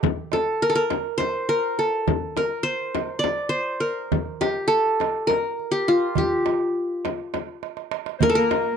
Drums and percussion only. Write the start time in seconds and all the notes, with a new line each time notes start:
0.03 darbuka dum, frame drum
0.32 darbuka tek, frame drum
0.77 darbuka ka
0.90 darbuka tek, frame drum
1.20 darbuka tek, frame drum
1.49 darbuka ka
1.78 darbuka ka
2.07 darbuka dum, frame drum
2.37 darbuka tek, frame drum
2.81 darbuka ka
2.95 darbuka tek, frame drum
3.24 darbuka tek, frame drum
3.53 darbuka ka
3.83 darbuka ka
4.12 darbuka dum, frame drum
4.41 darbuka tek, frame drum
4.86 darbuka ka
5.00 darbuka tek, frame drum
5.30 darbuka tek, frame drum
5.59 darbuka ka
5.88 darbuka ka
6.15 darbuka dum, frame drum
6.46 darbuka tek, frame drum
7.05 darbuka tek, frame drum
7.34 darbuka tek, frame drum
7.63 darbuka tek
7.77 darbuka ka
7.91 darbuka tek
8.06 darbuka ka
8.21 darbuka dum, frame drum
8.51 darbuka tek, frame drum